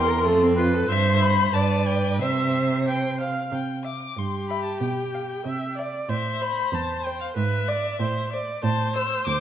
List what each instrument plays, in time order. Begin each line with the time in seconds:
Already playing: cello E2, violin G4 C6, viola A#4
0.09 violin A#4
0.24 cello F2, violin A3, viola A4
0.42 violin C4
0.57 violin F4, viola B4
0.73 violin A4
0.87 cello G2, viola C5, violin C5 E5
1.21 violin B5
1.53 cello G2, violin B4 A5, viola D5
1.88 violin G5
2.19 cello C3, violin C5 E5, viola E5
2.87 viola G5
3.20 viola F5
3.52 cello C3, violin G5
3.84 violin E5 D6
4.16 cello G2, viola G4, violin C6
4.50 violin E5 B5
4.64 violin A5
4.81 cello B2, violin G5
5.14 violin F5
5.45 cello C3, viola E5
5.77 viola D5, violin E5
6.09 cello A2, viola C5, violin E5
6.41 violin C5 B5
6.72 cello E2, violin A5
7.05 violin C5 G5
7.21 violin F5
7.36 cello G#2, viola B4, violin E5
7.68 violin D5, viola D5
8.00 cello A2, viola C5
8.32 violin C5, viola D5
8.63 cello A2, viola C5, violin A5
8.95 violin C5 E6
9.26 cello D2, violin D6